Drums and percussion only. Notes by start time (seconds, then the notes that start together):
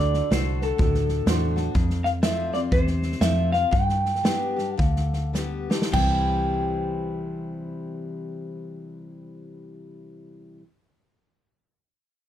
0.14 snare
0.32 snare, hi-hat pedal
0.61 snare
0.79 kick, snare
0.94 snare
1.09 snare
1.27 snare, hi-hat pedal
1.57 snare
1.75 kick, snare
1.90 snare
2.05 snare
2.23 snare, hi-hat pedal
2.54 snare
2.72 kick, snare
2.87 snare
3.03 snare
3.12 snare
3.21 snare, hi-hat pedal
3.53 snare
3.73 kick, snare
3.89 snare
4.05 snare
4.15 snare
4.25 snare, hi-hat pedal
4.58 snare
4.79 kick, snare
4.96 snare
5.13 snare
5.35 snare, hi-hat pedal
5.71 snare
5.82 snare
5.93 kick, crash